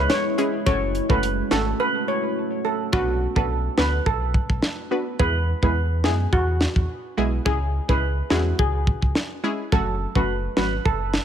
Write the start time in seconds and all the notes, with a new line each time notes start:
Already playing: G#3 C#4 E4
0.10 C#5, snare, closed hi-hat
0.38 G#3 C#4 E4 G#4, closed hi-hat
0.66 F#1 A3 C#4 F#4 A4 C#5, kick, closed hi-hat
0.95 closed hi-hat
1.09 F#1 A3 C#4 F#4 A4 B4, kick
1.23 closed hi-hat
1.51 G#1 A3 C#4 F#4 A4, snare, closed hi-hat
1.80 B4
2.08 C#5
2.65 A4
2.92 B1 B3 D4 F#4 B4, kick
3.36 B1 B3 D4 F#4 A4 B4, kick
3.78 D2 B3 D4 F#4 B4, snare
4.06 B1 A4, kick
4.34 kick
4.50 B1, kick
4.63 snare
4.91 B3 D4 F#4 B4
5.19 E2 G#3 B3 E4 G#4 B4, kick
5.63 E2 G#3 B3 E4 G#4 B4, kick
6.04 F#2 G#3 B3 E4 G#4, snare
6.33 E2 F#4, kick
6.61 snare
6.76 E2, kick
7.17 B1 G#3 B3 E4 G#4
7.45 C#2 G#3 C#4 E4 G#4, kick
7.89 C#2 G#3 C#4 E4 G#4 B4, kick
8.30 E2 G#3 C#4 E4 F#4 G#4, snare
8.59 C#2 G#4, kick
8.87 kick
9.02 C#2, kick
9.15 snare
9.44 G#3 C#4 E4 G#4
9.72 F#1 F#3 A3 C#4 F#4 A4, kick
10.15 F#1 F#3 A3 C#4 F#4 B4, kick
10.57 G#1 F#3 A3 C#4 F#4 B4, snare
10.85 F#1 A4, kick
11.14 snare